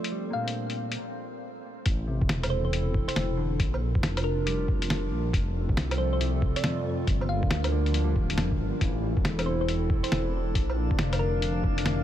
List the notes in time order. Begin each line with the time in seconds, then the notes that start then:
Already playing: F3 G3 A3 C4 F4 C5
0.04 closed hi-hat
0.11 G3 A#3 D4 A#4
0.30 A#2 A#3 F5
0.44 C4, closed hi-hat
0.70 closed hi-hat
0.92 closed hi-hat
1.85 A1 C4 E4 A4, kick, closed hi-hat
2.08 C3
2.21 E1, kick
2.29 snare, closed hi-hat
2.43 closed hi-hat, low woodblock
2.50 C5
2.65 C5
2.73 closed hi-hat
2.94 kick
3.08 C5, closed hi-hat
3.16 E1, snare, closed hi-hat
3.37 D3
3.59 A#1 D4 F4 A#4, kick, closed hi-hat
3.74 low woodblock
3.95 F1, kick
4.03 snare, closed hi-hat
4.17 closed hi-hat, low woodblock
4.24 A#4
4.46 G3, closed hi-hat
4.68 F1, kick
4.82 closed hi-hat
4.90 snare, closed hi-hat
5.12 A#1
5.33 F1 G3 A3 C4 F4 A4, kick, closed hi-hat
5.69 C2, kick
5.77 snare, closed hi-hat
5.91 closed hi-hat, low woodblock
5.98 F3 C5
6.13 C5
6.20 C3, closed hi-hat
6.42 kick
6.56 D5, closed hi-hat
6.63 F2, snare, closed hi-hat
7.07 G1 A#3 D4 A#4, kick, closed hi-hat
7.21 low woodblock
7.29 F5
7.43 D2, kick
7.51 snare, closed hi-hat
7.64 closed hi-hat, low woodblock
7.72 D3
7.86 closed hi-hat
7.92 F3, closed hi-hat
8.04 G3
8.16 D1, kick
8.30 closed hi-hat
8.38 F1 F3, snare, closed hi-hat
8.52 D2, kick
8.59 G1
8.81 A1 E3 C4 D4 E4 A4 D5, kick, closed hi-hat
9.17 E1, kick
9.25 snare, closed hi-hat
9.39 closed hi-hat, low woodblock
9.46 C5
9.61 C5
9.68 closed hi-hat
9.90 kick
10.03 C5, closed hi-hat
10.12 E1, snare, closed hi-hat
10.55 A#1 D4 A#4 F5, kick, closed hi-hat
10.70 low woodblock
10.91 F1, kick
10.99 C3 D3, snare, closed hi-hat
11.13 closed hi-hat, low woodblock
11.19 A#4
11.42 closed hi-hat
11.64 F1, kick
11.78 closed hi-hat
11.85 E3, snare, closed hi-hat